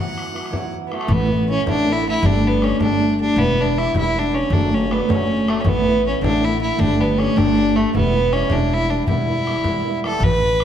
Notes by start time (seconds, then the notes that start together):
Already playing: E3 F#3 B3 E4 F#4 F#5
0.18 bodhran
0.32 F#3 B3 E4 F#4, bodhran
0.46 bodhran
0.50 E3 F#3 B3 E4 F#4, bodhran
0.74 bodhran
0.87 B3
0.91 F#3 A3 B3 E4 F#4, bodhran
1.01 bodhran
1.07 A1 A2 E3 A3 B3 E4, bodhran
1.12 B3
1.29 E3 A3 B3 E4, bodhran
1.47 E3 A3 B3 C#4 E4
1.66 A1 A2 E3 A3 B3 D4 E4, bodhran
1.87 E3 A3 B3 E4
1.92 E4
2.04 E3 A3 B3 E4
2.09 E4
2.23 G1 G3 A3 D4 G4, bodhran
2.43 G3 A3 D4 G4, bodhran
2.47 B3
2.62 G3 A3 C#4 D4 G4, bodhran
2.80 G1 G3 A3 D4 G4, bodhran
3.00 G3 A3 D4 G4
3.19 G3 A3 D4 G4
3.36 E1 E3 G3 B3 E4, bodhran
3.58 E3 G3 B3 D4 E4, bodhran
3.77 E3 G3 B3 E4, bodhran
3.94 E1 E3 G3 B3 E4, bodhran
3.99 E4
4.14 E3 G3 B3 E4
4.19 D4
4.33 E3 G3 B3 C#4 E4
4.50 F#1 F#3 A3 D4, bodhran
4.54 C#4 D4
4.72 F#3 A3 C#4 D4, bodhran
4.88 F#3 A3 B3 C#4 D4, bodhran
5.07 F#1 F#3 A3 C#4 D4, bodhran
5.28 F#3 A3 C#4 D4
5.45 F#3 A3 C#4 D4, bodhran
5.61 A1 C#4
5.65 A2 E3 A3 B3 E4, bodhran
5.85 E3 A3 B3 E4, bodhran
6.05 E3 A3 B3 C#4 E4
6.22 A1 A2 E3 A3 B3 D4 E4, bodhran
6.43 E3 A3 B3 E4
6.59 E3 A3 B3 E4
6.77 G1 G3 A3 D4 G4, bodhran
6.99 G3 A3 B3 D4 G4, bodhran
7.18 G3 A3 C#4 D4 G4, bodhran
7.35 G1 G3 A3 D4 G4, bodhran
7.56 G3 A3 D4 G4
7.76 G3 A3 D4 G4
7.95 E1 E3 G3 B3 E4, bodhran
8.14 E3 G3 B3 E4, bodhran
8.32 E3 G3 B3 C#4 E4, bodhran
8.50 E1 E3 G3 B3 D4 E4, bodhran
8.72 E3 G3 B3 E4
8.90 E3 G3 B3 D4 E4
9.07 E1 E3 G3 B3 E4, bodhran
9.12 E4
9.28 E3 G3 B3 E4, bodhran
9.47 E3 G3 B3 E4, bodhran
9.64 E1 E3 G3 B3 E4, bodhran
9.85 E3 G3 B3 E4
10.03 E3 G3 B3 E4 A4, bodhran
10.20 A1 B4, bodhran
10.42 bodhran
10.60 bodhran